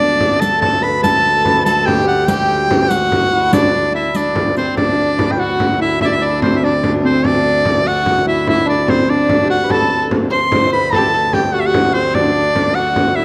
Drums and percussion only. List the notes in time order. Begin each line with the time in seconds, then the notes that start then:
0.20 frame drum
0.42 riq
0.62 frame drum
1.04 riq, frame drum
1.45 frame drum
1.66 riq
1.88 frame drum
2.28 riq, frame drum
2.71 frame drum
2.90 riq
3.12 frame drum
3.53 riq, frame drum
3.75 frame drum
4.15 riq, frame drum
4.36 frame drum
4.56 riq, frame drum
4.77 frame drum
5.19 frame drum
5.60 frame drum
6.01 frame drum
6.42 frame drum
6.83 frame drum
7.24 frame drum
7.65 frame drum
8.06 frame drum
8.47 frame drum
8.88 frame drum
9.29 frame drum
9.49 frame drum
9.70 frame drum
10.11 frame drum
10.52 frame drum
10.93 frame drum
11.33 frame drum
11.74 frame drum
12.15 frame drum
12.56 frame drum
12.96 frame drum